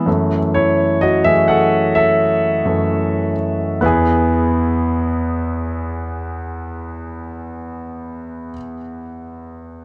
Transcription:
0.06 0.38 F#2 medium
0.06 0.38 E3 soft
0.06 0.38 A3 medium
0.54 0.99 E4 medium
0.54 1.03 C#5 medium
1.01 1.24 F#4 medium
1.01 1.25 D#5 medium
1.24 1.46 F#2 soft
1.24 1.46 E3 soft
1.24 1.46 A3 soft
1.24 1.31 G#4 medium
1.24 1.30 E5 medium
1.48 1.92 A4 medium
1.48 1.96 F#5 medium
1.95 3.33 A4 medium
1.95 3.32 E5 medium
2.65 3.79 F#2 soft
2.65 3.79 E3 soft
2.65 3.79 A3 medium
3.81 8.52 E2 medium
3.81 8.50 B3 medium
3.81 8.53 E4 medium
3.86 8.55 G#4 medium

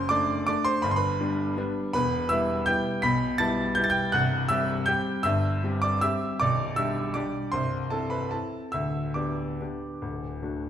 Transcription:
0.00 0.50 F#1 medium
0.00 0.50 F#2 medium
0.00 0.50 C5 medium
0.00 0.50 C6 loud
0.09 0.44 A3 medium
0.09 0.44 D4 medium
0.09 0.45 D5 loud
0.09 0.45 D6 loud
0.47 0.80 A3 medium
0.47 0.80 D4 medium
0.47 0.65 D5 medium
0.47 0.65 D6 loud
0.65 0.82 C5 medium
0.65 0.83 C6 loud
0.82 1.19 G1 medium
0.82 1.19 G2 medium
0.82 0.89 B5 loud
0.91 0.97 C6 loud
0.96 1.73 B4 medium
0.96 1.76 B5 loud
1.20 1.54 G3 medium
1.20 1.54 B3 medium
1.20 1.54 D4 medium
1.57 1.91 G3 medium
1.57 1.91 B3 medium
1.57 1.91 D4 medium
1.93 2.30 E1 medium
1.93 2.30 E2 medium
1.93 2.28 B4 loud
1.93 2.30 B5 loud
2.29 2.64 G3 medium
2.29 2.64 B3 medium
2.29 2.64 E4 medium
2.29 2.64 E5 medium
2.29 2.66 E6 loud
2.66 3.00 G3 medium
2.66 3.00 B3 medium
2.66 3.00 E4 medium
2.66 3.01 G5 loud
2.66 3.03 G6 loud
3.02 3.39 B1 medium
3.02 3.38 B2 medium
3.02 3.37 B5 loud
3.02 3.39 B6 loud
3.38 3.74 G3 medium
3.38 3.74 B3 medium
3.38 3.74 E4 medium
3.38 3.75 A5 loud
3.38 3.77 A6 loud
3.75 4.11 G3 medium
3.75 4.11 B3 medium
3.75 4.11 E4 medium
3.75 3.83 G6 loud
3.84 3.91 A6 loud
3.90 4.13 G5 loud
3.90 4.14 G6 loud
4.12 4.49 C1 medium
4.12 4.49 C2 medium
4.12 4.48 F#5 loud
4.12 4.50 F#6 loud
4.49 4.84 G3 medium
4.49 4.85 C4 medium
4.49 4.85 G4 medium
4.49 4.85 E5 loud
4.49 4.87 E6 loud
4.86 5.22 G3 medium
4.86 5.22 C4 medium
4.86 5.22 G4 medium
4.86 5.22 G5 medium
4.86 5.25 G6 loud
5.23 5.62 G1 medium
5.23 5.62 G2 medium
5.23 5.79 E5 loud
5.23 5.82 E6 loud
5.63 5.99 G3 medium
5.63 5.99 C4 medium
5.63 6.00 G4 medium
5.82 6.02 D5 medium
5.82 6.02 D6 loud
6.01 6.37 G3 medium
6.01 6.37 C4 medium
6.01 6.37 G4 medium
6.01 6.38 E5 medium
6.01 6.40 E6 loud
6.40 6.77 B0 medium
6.40 6.77 B1 medium
6.40 6.75 D5 medium
6.40 6.77 D6 loud
6.76 7.12 G3 medium
6.76 7.12 D4 medium
6.76 7.13 G4 medium
6.76 7.13 E5 medium
6.76 7.15 E6 loud
7.14 7.50 G3 medium
7.14 7.50 D4 medium
7.14 7.50 G4 medium
7.14 7.50 D5 medium
7.14 7.52 D6 loud
7.52 7.91 C1 medium
7.52 7.91 C2 medium
7.52 7.89 C5 medium
7.52 7.91 C6 loud
7.90 8.29 C4 medium
7.90 8.29 E4 soft
7.90 8.10 A4 medium
7.90 8.11 A5 medium
8.10 8.31 B4 medium
8.10 8.31 B5 medium
8.31 8.70 C4 soft
8.31 8.70 E4 soft
8.31 8.71 A4 medium
8.31 8.73 A5 medium
8.72 9.15 D1 medium
8.72 9.15 D2 medium
8.72 9.13 E5 medium
8.72 9.15 E6 loud
9.14 9.55 B3 soft
9.14 9.56 D4 soft
9.14 9.56 G4 soft
9.14 10.70 D5 soft
9.14 10.70 D6 medium
9.61 9.99 B3 soft
9.61 9.99 D4 soft
9.61 9.99 G4 soft
10.02 10.42 D1 medium
10.02 10.41 D2 medium
10.43 10.70 A3 soft
10.43 10.70 D4 soft
10.43 10.70 F#4 soft

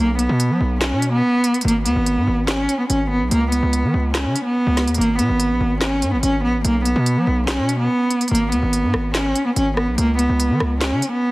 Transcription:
0.00 0.28 B1 loud
0.00 0.14 A#3 loud
0.19 0.78 B3 medium
0.19 closed hi-hat medium
0.29 0.52 B2 loud
0.40 closed hi-hat medium
0.50 0.60 F#3 loud
0.60 0.93 B1 loud
0.81 1.11 C#4 medium
0.81 snare loud
0.81 clap medium
0.81 closed hi-hat medium
0.92 1.21 B2 loud
1.02 closed hi-hat medium
1.13 1.62 B3 loud
1.44 closed hi-hat medium
1.54 closed hi-hat soft
1.61 1.87 G#1 loud
1.61 1.81 A#3 loud
1.61 closed hi-hat medium
1.68 closed hi-hat medium
1.85 1.95 D#2 loud
1.85 2.44 B3 medium
1.85 closed hi-hat medium
1.96 2.18 G#1 loud
2.06 closed hi-hat medium
2.17 2.27 G#2 loud
2.27 2.67 G#1 loud
2.48 2.78 C#4 medium
2.48 snare loud
2.48 clap medium
2.48 closed hi-hat medium
2.69 closed hi-hat medium
2.79 2.87 B3 medium
2.89 3.23 G#1 loud
2.89 3.05 C#4 medium
2.89 closed hi-hat medium
3.10 3.26 B3 medium
3.21 3.31 B1 medium
3.31 3.61 C#2 loud
3.31 3.48 A#3 loud
3.31 closed hi-hat medium
3.52 4.11 B3 medium
3.52 closed hi-hat medium
3.63 3.85 C#2 loud
3.73 closed hi-hat medium
3.83 3.93 E3 loud
3.94 4.27 C#2 loud
4.15 4.44 C#4 medium
4.15 snare loud
4.15 clap medium
4.15 closed hi-hat medium
4.25 4.35 C#3 loud
4.36 closed hi-hat medium
4.45 4.94 B3 medium
4.67 4.89 C#2 loud
4.77 snare medium
4.77 closed hi-hat medium
4.88 4.97 E2 medium
4.88 closed hi-hat medium
4.94 5.20 G#1 loud
4.94 5.14 A#3 loud
4.94 closed hi-hat medium
5.01 closed hi-hat medium
5.19 5.29 B2 loud
5.19 5.78 B3 medium
5.19 closed hi-hat medium
5.29 5.52 G#1 loud
5.40 closed hi-hat medium
5.50 5.60 A#1 loud
5.60 6.04 G#1 loud
5.81 6.11 C#4 medium
5.81 snare loud
5.81 clap medium
5.81 closed hi-hat medium
6.02 6.14 G#2 loud
6.02 closed hi-hat medium
6.13 6.23 G#1 loud
6.13 6.21 B3 medium
6.23 6.45 G#1 loud
6.23 6.39 C#4 medium
6.23 closed hi-hat medium
6.43 6.56 A#1 loud
6.43 6.60 B3 medium
6.54 6.64 G#1 medium
6.65 6.95 B1 loud
6.65 6.81 A#3 loud
6.65 closed hi-hat medium
6.85 7.44 B3 medium
6.85 closed hi-hat medium
6.96 7.18 B2 loud
7.06 closed hi-hat medium
7.17 7.27 F#3 loud
7.27 7.60 B1 loud
7.48 7.77 C#4 medium
7.48 snare loud
7.48 clap medium
7.48 closed hi-hat medium
7.58 7.88 B2 loud
7.69 closed hi-hat medium
7.80 8.28 B3 loud
8.10 closed hi-hat medium
8.21 closed hi-hat soft
8.28 8.54 G#1 loud
8.28 8.47 A#3 loud
8.28 closed hi-hat medium
8.35 closed hi-hat medium
8.52 8.62 D#2 loud
8.52 9.11 B3 medium
8.52 closed hi-hat medium
8.63 8.85 G#1 loud
8.73 closed hi-hat medium
8.83 8.93 G#2 loud
8.94 9.34 G#1 loud
8.94 cross-stick medium
9.15 9.44 C#4 medium
9.15 snare loud
9.15 clap medium
9.15 closed hi-hat medium
9.35 closed hi-hat medium
9.46 9.54 B3 medium
9.56 9.89 G#1 loud
9.56 9.72 C#4 medium
9.56 closed hi-hat medium
9.77 9.93 B3 medium
9.77 cross-stick medium
9.87 9.97 B1 loud
9.98 10.28 C#2 loud
9.98 10.14 A#3 loud
9.98 closed hi-hat medium
10.19 10.78 B3 medium
10.19 closed hi-hat medium
10.29 10.52 C#2 loud
10.40 closed hi-hat medium
10.50 10.60 E3 loud
10.60 10.93 C#2 loud
10.60 cross-stick medium
10.81 11.11 C#4 medium
10.81 snare loud
10.81 clap medium
10.81 closed hi-hat medium
10.92 11.02 C#3 loud
11.02 closed hi-hat medium
11.12 11.31 B3 medium

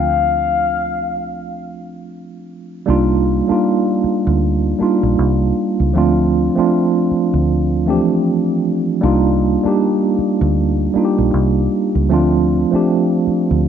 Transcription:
0.00 2.84 D2 medium
0.00 2.82 F3 medium
0.00 2.83 A3 soft
0.00 2.84 C4 soft
0.00 2.85 D4 soft
0.00 2.86 F4 medium
0.00 2.12 F5 loud
2.86 3.40 C2 medium
2.86 3.41 G3 loud
2.86 3.42 A#3 medium
2.86 3.42 D4 loud
2.86 3.43 D#4 medium
2.86 3.43 F4 loud
3.48 4.69 G3 medium
3.48 4.69 A#3 medium
3.48 4.70 D4 medium
3.48 4.70 D#4 medium
3.48 muted fingered electric bass stroke soft
3.52 4.71 F4 medium
4.04 muted fingered electric bass stroke soft
4.27 4.72 D2 medium
4.79 5.86 G3 medium
4.79 5.86 A#3 medium
4.79 5.87 D4 medium
4.79 5.87 D#4 medium
4.79 muted fingered electric bass stroke soft
4.83 5.88 F4 loud
5.03 5.16 A#1 medium
5.19 5.51 C2 medium
5.80 5.93 C#2 medium
5.94 6.48 D2 medium
5.94 6.49 F3 loud
5.94 6.50 A3 medium
5.94 6.50 C4 medium
5.94 6.51 D4 loud
5.98 6.51 F4 loud
6.55 7.76 F3 medium
6.55 7.77 A3 medium
6.55 7.77 C4 medium
6.55 7.78 D4 medium
6.55 7.78 F4 medium
6.55 muted fingered electric bass stroke soft
7.11 muted fingered electric bass stroke soft
7.34 7.99 D2 medium
7.86 7.94 E3 medium
7.86 8.94 A3 medium
7.86 8.94 C4 medium
7.86 8.95 D4 medium
7.90 8.96 F3 medium
7.90 8.95 G4 loud
9.01 9.56 C2 loud
9.01 9.57 G3 loud
9.01 9.57 A#3 medium
9.01 9.58 D4 medium
9.01 9.58 D#4 loud
9.05 9.59 F4 loud
9.63 10.84 G3 medium
9.63 10.85 A#3 medium
9.63 10.85 D4 medium
9.63 10.86 D#4 medium
9.63 muted fingered electric bass stroke soft
9.68 10.86 G4 loud
10.18 muted fingered electric bass stroke soft
10.41 10.87 D2 medium
10.94 12.01 G3 medium
10.94 12.02 A#3 medium
10.94 12.02 D4 medium
10.94 12.02 D#4 medium
10.94 muted fingered electric bass stroke soft
10.98 11.04 F4 medium
11.05 12.06 G4 medium
11.18 11.31 A#1 medium
11.34 11.66 C2 medium
11.95 12.08 C#2 medium
12.09 12.63 D2 medium
12.09 12.65 F3 loud
12.09 12.65 A3 loud
12.09 12.66 C4 loud
12.09 12.66 D4 medium
12.14 12.67 F4 loud
12.71 13.68 F3 medium
12.71 13.68 A3 medium
12.71 13.68 C4 medium
12.71 13.68 D4 medium
12.71 muted fingered electric bass stroke soft
12.76 13.68 G4 medium
13.27 muted fingered electric bass stroke soft
13.51 13.68 D2 medium

